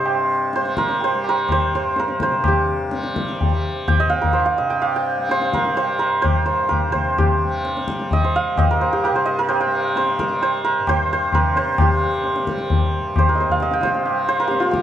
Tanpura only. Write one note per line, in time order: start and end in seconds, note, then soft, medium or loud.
0.00 1.71 G2 medium
0.00 2.31 C3 medium
0.00 0.57 G3 medium
0.57 1.15 G3 medium
1.15 2.89 G3 medium
1.72 4.04 G2 medium
2.31 4.59 C3 medium
2.89 3.46 G3 medium
3.46 5.18 G3 medium
4.05 6.31 G2 medium
4.60 6.88 C3 medium
5.18 5.73 G3 medium
5.73 7.44 G3 medium
6.31 8.55 G2 medium
6.88 9.11 C3 medium
7.44 8.00 G3 medium
8.00 9.66 G3 medium
8.55 10.79 G2 medium
9.12 11.34 C3 medium
9.66 10.23 G3 medium
10.23 11.88 G3 medium
10.79 12.99 G2 medium
11.34 13.56 C3 medium
11.88 12.43 G3 medium
12.43 14.10 G3 medium
13.00 14.82 G2 medium
13.56 14.82 C3 medium
14.10 14.64 G3 medium
14.64 14.82 G3 medium